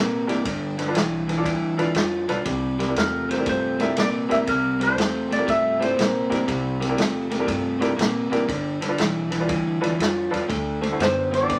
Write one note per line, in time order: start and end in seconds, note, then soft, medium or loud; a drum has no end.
0.00 0.26 A#2 medium
0.00 0.25 C3 medium
0.00 0.26 A#3 medium
0.27 0.44 F#1 medium
0.27 0.43 C3 medium
0.27 0.44 A#3 medium
0.27 0.36 D4 medium
0.27 0.36 E4 medium
0.27 0.36 G4 medium
0.27 0.36 A#4 medium
0.27 snare soft
0.27 ride medium
0.45 0.92 G1 medium
0.45 0.75 G2 medium
0.45 0.75 D3 medium
0.45 kick loud
0.45 snare soft
0.45 ride medium
0.78 0.93 G2 medium
0.78 0.94 D3 medium
0.78 0.83 A4 soft
0.78 0.83 B4 soft
0.78 snare soft
0.78 ride medium
0.88 0.96 D4 medium
0.88 0.96 F4 medium
0.88 0.96 A4 medium
0.88 0.96 B4 medium
0.94 1.41 B1 medium
0.94 1.24 G2 medium
0.94 1.25 E3 medium
0.94 snare loud
0.94 ride medium
1.27 1.43 G2 medium
1.27 1.43 E3 medium
1.27 1.33 A4 soft
1.27 1.33 B4 medium
1.27 snare soft
1.27 ride medium
1.38 1.46 D4 medium
1.38 1.46 F4 medium
1.38 1.46 A4 medium
1.38 1.46 D5 medium
1.44 1.92 D2 medium
1.44 1.75 G2 medium
1.44 1.75 E3 medium
1.44 kick loud
1.44 snare soft
1.44 ride medium
1.77 1.93 G2 medium
1.77 1.93 E3 medium
1.77 1.87 D4 medium
1.77 1.87 F4 medium
1.77 1.87 A4 medium
1.77 1.87 B4 medium
1.77 snare soft
1.77 ride medium
1.94 2.26 F2 medium
1.94 2.25 G2 medium
1.94 2.25 F3 medium
1.94 snare loud
1.94 ride medium
2.28 2.44 B1 medium
2.28 2.44 G2 medium
2.28 2.44 F3 medium
2.28 2.37 D4 medium
2.28 2.37 F4 medium
2.28 2.38 A4 medium
2.28 2.37 B4 medium
2.28 snare soft
2.28 ride medium
2.45 2.92 C2 medium
2.45 2.75 C3 medium
2.45 2.76 G3 medium
2.45 kick loud
2.45 snare soft
2.45 ride medium
2.79 2.94 C3 medium
2.79 2.94 G3 medium
2.79 2.83 G4 soft
2.79 2.84 A#4 medium
2.79 snare soft
2.79 ride medium
2.88 2.96 D4 medium
2.88 2.96 E4 medium
2.88 2.96 G4 medium
2.88 2.96 A#4 medium
2.96 3.42 E2 medium
2.96 3.26 C3 medium
2.96 3.26 A3 medium
2.96 3.31 A#4 medium
2.96 snare medium
2.96 ride medium
3.29 3.44 C3 medium
3.29 3.44 A3 medium
3.29 3.33 G4 soft
3.29 3.34 A#4 soft
3.29 3.48 C5 medium
3.29 snare soft
3.29 ride medium
3.38 3.46 D4 medium
3.38 3.46 E4 medium
3.38 3.46 G4 medium
3.38 3.46 A#4 medium
3.46 3.92 G2 medium
3.46 3.76 C3 medium
3.46 3.76 A3 medium
3.46 3.79 C5 medium
3.46 kick loud
3.46 snare soft
3.46 ride medium
3.79 3.94 C3 medium
3.79 3.95 A3 medium
3.79 3.88 D4 medium
3.79 3.88 E4 medium
3.79 3.88 G4 medium
3.79 3.88 A#4 medium
3.79 3.96 E5 medium
3.79 snare soft
3.79 ride medium
3.96 4.27 A#2 medium
3.96 4.26 C3 medium
3.96 4.26 A#3 medium
3.96 4.08 D5 medium
3.96 snare medium
3.96 ride medium
4.29 4.46 A2 medium
4.29 4.44 C3 medium
4.29 4.45 A#3 medium
4.29 4.38 D4 medium
4.29 4.38 E4 medium
4.29 4.38 G4 medium
4.29 4.38 A#4 medium
4.29 4.37 E5 medium
4.29 snare soft
4.29 ride medium
4.46 4.93 C2 medium
4.46 4.76 C3 medium
4.46 4.77 G3 medium
4.46 4.82 A#4 medium
4.46 kick loud
4.46 snare soft
4.46 ride medium
4.79 4.95 C3 medium
4.79 4.95 G3 medium
4.79 4.84 G4 soft
4.79 4.84 C5 soft
4.79 5.33 C5 medium
4.79 snare soft
4.79 ride medium
4.88 4.96 D4 medium
4.88 4.96 E4 medium
4.88 4.97 G4 medium
4.88 4.97 A4 medium
4.96 5.43 E2 medium
4.96 5.27 C3 medium
4.96 5.27 A3 medium
4.96 snare loud
4.96 ride medium
5.29 5.46 C3 medium
5.29 5.46 A3 medium
5.29 5.33 G4 soft
5.29 5.34 A4 soft
5.29 ride medium
5.33 5.49 D5 medium
5.33 snare soft
5.38 5.47 D4 medium
5.38 5.47 E4 medium
5.38 5.47 G4 medium
5.38 5.47 A#4 medium
5.47 5.93 G2 medium
5.47 5.77 C3 medium
5.47 5.77 A3 medium
5.47 5.83 E5 medium
5.47 kick loud
5.47 snare soft
5.47 ride medium
5.79 5.95 C3 medium
5.79 5.95 A3 medium
5.79 5.89 D4 medium
5.79 5.88 E4 medium
5.79 5.89 G4 medium
5.79 5.89 C5 medium
5.79 7.28 C5 medium
5.79 ride medium
5.84 snare soft
5.96 6.28 A#2 medium
5.96 6.27 C3 medium
5.96 6.27 A#3 medium
5.96 ride medium
6.00 snare loud
6.30 6.46 A2 medium
6.30 6.45 C3 medium
6.30 6.46 A#3 medium
6.30 6.39 D4 medium
6.30 6.39 E4 medium
6.30 6.39 G4 medium
6.30 6.39 A#4 medium
6.30 snare soft
6.30 ride medium
6.47 6.94 C2 medium
6.47 6.77 C3 medium
6.47 6.77 G3 medium
6.47 kick loud
6.47 snare soft
6.47 ride medium
6.80 6.95 C3 medium
6.80 6.96 G3 medium
6.80 6.84 G4 soft
6.80 6.85 A#4 soft
6.80 ride medium
6.84 snare soft
6.89 6.97 D4 medium
6.89 6.98 E4 medium
6.89 6.98 G4 medium
6.89 6.98 A#4 medium
6.97 7.27 C3 medium
6.97 7.27 A3 medium
6.97 snare loud
6.97 ride medium
7.30 7.45 C3 medium
7.30 7.46 A3 medium
7.30 7.35 G4 soft
7.30 7.35 A#4 medium
7.30 snare soft
7.30 ride medium
7.39 7.48 D4 medium
7.39 7.48 E4 medium
7.39 7.48 G4 medium
7.39 7.48 A#4 medium
7.46 7.94 G2 medium
7.46 7.77 C3 medium
7.46 7.77 A3 medium
7.46 kick loud
7.46 snare soft
7.46 ride medium
7.79 7.95 C3 medium
7.79 7.96 A3 medium
7.79 7.89 D4 medium
7.79 7.90 E4 medium
7.79 7.90 G4 medium
7.79 7.90 A#4 medium
7.79 ride medium
7.83 snare soft
7.96 8.29 A#2 medium
7.96 8.27 C3 medium
7.96 8.27 A#3 medium
7.96 ride medium
8.01 snare loud
8.30 8.47 A2 medium
8.30 8.46 C3 medium
8.30 8.46 A#3 medium
8.30 8.40 D4 medium
8.30 8.40 E4 medium
8.30 8.40 G4 medium
8.30 8.40 A#4 medium
8.30 ride medium
8.34 snare soft
8.47 8.95 G1 medium
8.47 8.78 G2 medium
8.47 8.78 D3 medium
8.47 kick loud
8.47 snare soft
8.47 ride medium
8.81 8.97 G2 medium
8.81 8.97 D3 medium
8.81 8.86 A4 soft
8.81 8.86 B4 medium
8.81 snare soft
8.81 ride medium
8.89 8.98 D4 medium
8.89 8.98 F4 medium
8.89 8.98 A4 medium
8.89 8.98 B4 medium
8.98 9.45 B1 medium
8.98 9.29 G2 medium
8.98 9.29 E3 medium
8.98 snare loud
8.98 ride medium
9.30 9.47 G2 medium
9.30 9.47 E3 medium
9.30 9.36 A4 soft
9.30 9.36 B4 medium
9.30 snare soft
9.30 ride medium
9.40 9.49 D4 medium
9.40 9.49 F4 medium
9.40 9.49 A4 medium
9.40 9.49 B4 medium
9.48 9.95 D2 medium
9.48 9.79 G2 medium
9.48 9.79 E3 medium
9.48 kick loud
9.48 snare soft
9.48 ride medium
9.81 9.97 G2 medium
9.81 9.97 E3 medium
9.81 9.90 D4 medium
9.81 9.90 F4 medium
9.81 9.90 A4 medium
9.81 9.90 B4 medium
9.81 ride medium
9.85 snare soft
9.99 10.30 F2 medium
9.99 10.29 G2 medium
9.99 10.29 F3 medium
9.99 snare loud
9.99 ride medium
10.31 10.49 E2 medium
10.31 10.47 G2 medium
10.31 10.48 F3 medium
10.31 10.40 D4 medium
10.31 10.40 F4 medium
10.31 10.40 A4 medium
10.31 10.40 B4 medium
10.31 ride medium
10.35 snare soft
10.48 10.96 D2 medium
10.48 10.79 D3 medium
10.48 10.79 A3 medium
10.48 kick loud
10.48 snare soft
10.48 ride medium
10.81 10.97 D3 medium
10.81 10.98 A3 medium
10.81 10.87 A4 soft
10.81 10.86 C5 medium
10.81 snare soft
10.81 ride medium
10.92 11.00 E4 medium
10.92 11.00 F#4 medium
10.92 11.00 A4 medium
10.92 11.00 C5 medium
10.99 11.46 F#2 medium
10.99 11.30 D3 medium
10.99 11.30 B3 medium
10.99 11.35 C5 medium
10.99 snare loud
10.99 ride medium
11.31 11.47 D3 medium
11.31 11.48 B3 medium
11.31 11.37 A4 soft
11.31 11.38 C5 soft
11.31 11.59 D5 medium
11.31 snare soft
11.31 ride medium
11.41 11.50 E4 medium
11.41 11.50 F#4 medium
11.41 11.50 A4 medium
11.41 11.50 C5 medium
11.48 11.59 A2 medium
11.48 11.59 D3 medium
11.48 11.59 B3 medium
11.48 kick medium
11.48 snare soft
11.48 ride medium